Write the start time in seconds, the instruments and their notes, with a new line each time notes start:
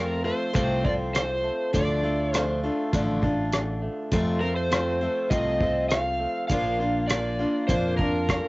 Already playing: fingered electric bass F2, steel-string acoustic guitar F3 A3 C4 F4, clean electric guitar F3 A3, electric slide guitar A#4
0.24 steel-string acoustic guitar F3 A3 C4 F4, electric slide guitar C5
0.53 fingered electric bass C2, steel-string acoustic guitar F2 C3 F3 A3 C4 F4, electric slide guitar C5, kick, closed hi-hat
0.84 steel-string acoustic guitar F3 A3 C4 F4, electric slide guitar D5, kick
1.14 clean electric guitar F3, electric slide guitar C5, cross-stick, closed hi-hat
1.44 clean electric guitar A3
1.73 fingered electric bass D2, steel-string acoustic guitar D3 F3 A3 D4 F4, electric slide guitar D5, kick, closed hi-hat
2.03 steel-string acoustic guitar A3 D4 F4
2.33 steel-string acoustic guitar F3 A3 D4 F4, electric slide guitar C5, cross-stick, closed hi-hat
2.63 steel-string acoustic guitar A3 D4 F4
2.93 fingered electric bass A1, steel-string acoustic guitar D3 F3 A3 D4 F4, kick, closed hi-hat
3.22 steel-string acoustic guitar A3 D4 F4, kick
3.53 clean electric guitar D3, cross-stick, closed hi-hat
3.82 clean electric guitar A3
4.12 steel-string acoustic guitar F2 C3 F3 A3 C4 F4, fingered electric bass F2, kick, closed hi-hat
4.41 steel-string acoustic guitar F3 A3 C4 F4, electric slide guitar A#4
4.56 electric slide guitar C5
4.70 steel-string acoustic guitar F3 A3 C4 F4, cross-stick, closed hi-hat
5.01 steel-string acoustic guitar F3 A3 C4 F4
5.30 fingered electric bass C2, steel-string acoustic guitar F2 C3 F3 A3 C4 F4, electric slide guitar D#5, kick, closed hi-hat
5.61 steel-string acoustic guitar F3 A3 C4 F4, kick
5.89 clean electric guitar F3, electric slide guitar F5, cross-stick, closed hi-hat
6.20 clean electric guitar A3
6.48 fingered electric bass A#1, steel-string acoustic guitar A#2 F3 A#3 D4, electric slide guitar F5, kick, closed hi-hat
6.52 steel-string acoustic guitar F4
6.80 steel-string acoustic guitar A#3 D4 F4
7.08 steel-string acoustic guitar F3 A#3 D4, electric slide guitar D5, cross-stick, closed hi-hat
7.12 steel-string acoustic guitar F4
7.39 steel-string acoustic guitar A#3 D4 F4
7.68 fingered electric bass F2, steel-string acoustic guitar A#2 F3 A#3 D4 F4, electric slide guitar C5, kick, closed hi-hat
7.97 steel-string acoustic guitar D4 F4, electric slide guitar A#4, kick
8.01 steel-string acoustic guitar A#3
8.29 clean electric guitar D3, kick, cross-stick, closed hi-hat